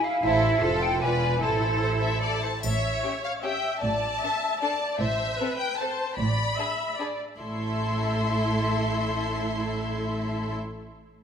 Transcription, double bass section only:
0.23 0.60 A1 medium
0.63 1.01 F1 medium
1.03 1.43 E1 medium
1.42 2.43 A1 soft
2.65 2.96 A1 medium
3.83 4.14 A1 medium
5.01 5.32 A1 medium
6.18 6.50 A1 medium
7.39 10.53 A1 soft

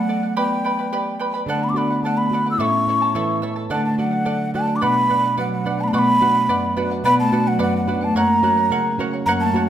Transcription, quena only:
0.00 0.37 F#5 medium
0.38 1.16 G5 medium
1.49 1.65 A5 medium
1.64 1.71 B5 medium
1.69 1.79 D6 medium
1.77 2.03 B5 medium
2.03 2.19 A5 medium
2.17 2.50 B5 medium
2.51 2.60 E6 medium
2.58 3.42 C#6 loud
2.58 2.63 D6 loud
3.71 3.84 A5 medium
3.85 3.98 A5 medium
3.99 4.51 F#5 medium
4.54 4.77 A5 medium
4.76 4.84 D6 medium
4.83 5.38 B5 loud
5.39 5.51 F#5 medium
5.53 5.82 F#5 medium
5.81 5.84 A5 medium
5.81 5.89 B5 medium
5.88 5.93 A5 medium
5.94 6.00 C#6 loud
5.99 6.73 B5 loud
7.05 7.18 B5 loud
7.19 7.49 A5 medium
7.48 7.61 F#5 medium
7.62 7.74 F#5 medium
7.77 8.06 F#5 medium
8.04 8.17 A5 loud
8.17 8.96 A#5 loud
9.26 9.32 A#5 loud
9.40 9.66 A5 medium

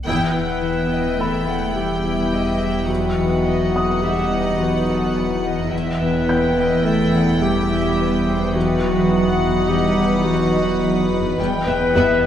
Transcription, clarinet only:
0.33 1.21 B4 medium
1.20 1.75 A4 soft
1.75 2.89 G4 medium
2.88 4.04 F#4 medium
4.02 4.60 G4 medium
4.59 5.72 F#4 soft
6.00 6.86 B4 medium
6.85 7.43 A4 medium
7.42 8.54 G4 medium
8.54 9.70 F#4 medium
9.68 10.24 G4 medium
10.25 11.36 F#4 medium
11.67 12.26 B4 medium

